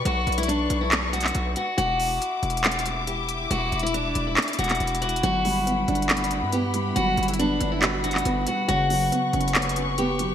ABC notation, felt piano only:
X:1
M:4/4
L:1/8
Q:1/4=139
K:Edor
V:1 name="Felt piano"
z8 | z8 | z8 | F, G, B, D2 D B, G, |
F, G, B, D F D B, G, | C, F, B, C c C B, F, |]